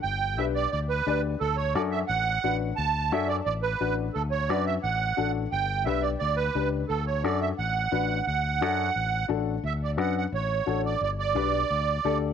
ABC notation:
X:1
M:4/4
L:1/8
Q:1/4=175
K:D
V:1 name="Accordion"
g2 e d d B2 z | A c d e f3 z | a2 e d d B2 z | A c d e f3 z |
g2 e d d B2 z | A c d e f4 | f6 z2 | e d f f c3 d |
d d6 z |]
V:2 name="Upright piano"
z2 [DGB] z3 [DGd] z | z2 [DFA] z3 [DFB] z | z2 [DFA] z3 [DFB] z | z2 [DFB] z3 [DFA] z |
z2 [DGB] z3 [DGB] z | z2 [DFA] z3 [DFB] z | z2 [DFA] z3 [DFA] z | z2 [DFB] z3 [DFA] z |
z2 [DGB] z3 [DGA] z |]
V:3 name="Fingered electric bass" clef=bass
G,,,2 B,,,2 D,,2 D,,2 | D,,2 F,,2 A,,,2 A,,,2 | D,,2 F,,2 A,,,2 A,,,2 | D,,2 F,,2 A,,,2 A,,,2 |
G,,,2 B,,,2 D,,2 C,,2 | D,,2 F,,2 A,,,2 A,,,2 | D,,2 F,,2 A,,,2 A,,,2 | D,,2 F,,2 A,,,2 A,,,2 |
G,,,2 B,,,2 D,,2 D,,2 |]